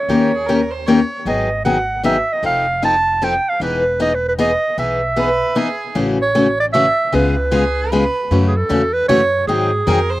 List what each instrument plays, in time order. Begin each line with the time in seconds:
Already playing: clarinet C#5
0.09 upright bass D#2, steel-string acoustic guitar D#3 A#3 C#4 G4 A#4
0.34 violin G#4
0.46 steel-string acoustic guitar D#3 A#3 C#4 G4 A#4, violin A#4
0.71 violin C5
0.86 steel-string acoustic guitar D#3 A#3 C#4 G4 A#4, violin C#5
1.25 upright bass G#1, steel-string acoustic guitar D#3 F#3 B3 D#4 G#4, clarinet D#5
1.65 steel-string acoustic guitar D#3 F#3 B3 D#4 G#4, clarinet F#5
2.03 steel-string acoustic guitar D#3 F#3 B3 D#4 G#4, clarinet E5
2.33 clarinet D#5
2.43 upright bass F1, steel-string acoustic guitar F3 C4 D#4 A4, clarinet F5
2.82 steel-string acoustic guitar F3 C4 D#4 A4, clarinet A5
3.22 steel-string acoustic guitar F3 C4 D#4 A4, clarinet G5
3.49 clarinet F5
3.60 upright bass E1, steel-string acoustic guitar E3 B3 D#4 G#4, clarinet B4
4.00 steel-string acoustic guitar E3 B3 D#4 G#4, clarinet D#5
4.15 clarinet B4
4.28 clarinet B4
4.38 steel-string acoustic guitar E3 B3 D#4 G#4, clarinet D#5
4.78 upright bass B1, steel-string acoustic guitar E3 B3 D#4 G#4, clarinet E5
5.16 steel-string acoustic guitar E3 B3 D#4 G#4, violin B4
5.55 steel-string acoustic guitar E3 B3 D#4 G#4, violin G#4
5.95 upright bass A1, steel-string acoustic guitar C#3 E3 A3 C#4 F#4
6.22 clarinet C#5
6.35 steel-string acoustic guitar C#3 E3 A3 C#4 F#4
6.60 clarinet D5
6.73 steel-string acoustic guitar C#3 E3 A3 C#4 F#4, clarinet E5
7.12 upright bass C#2, steel-string acoustic guitar C#3 G#3 B3 F4 G#4, clarinet B4
7.51 steel-string acoustic guitar C#3 G#3 B3 F4 G#4, violin G#4
7.91 steel-string acoustic guitar C#3 G#3 B3 F4 G#4, violin B4
8.31 upright bass F#2, steel-string acoustic guitar C#3 E3 A3 C#4 F#4
8.47 clarinet G#4
8.56 clarinet A4
8.69 upright bass E2, steel-string acoustic guitar C#3 E3 A3 C#4 F#4
8.93 clarinet B4
9.08 upright bass F#2, steel-string acoustic guitar C#3 E3 A3 C#4 F#4, clarinet C#5
9.47 upright bass G#2, steel-string acoustic guitar D#3 F#3 C4 D#4 G#4, clarinet G#4
9.87 upright bass F2, steel-string acoustic guitar D#3 F#3 C4 D#4 G#4, violin A#4
10.10 violin C5